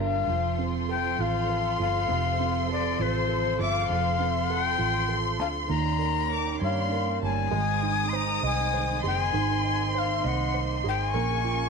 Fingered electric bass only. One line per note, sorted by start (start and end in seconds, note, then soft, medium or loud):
0.00 0.25 G1 loud
0.27 1.15 F1 medium
1.19 1.76 A1 medium
1.80 2.08 G1 loud
2.09 2.96 F1 loud
3.00 3.56 A1 medium
3.59 3.88 G1 loud
3.89 4.76 F1 loud
4.79 5.39 A1 medium
5.39 5.68 D2 medium
5.70 6.57 D#2 loud
6.62 7.18 G2 medium
7.23 7.51 G1 medium
7.52 8.39 G#1 loud
8.43 9.00 C2 medium
9.04 9.32 F#1 medium
9.34 10.21 G#1 loud
10.24 10.81 C2 loud
10.85 11.13 G#1 medium
11.14 11.69 A#1 loud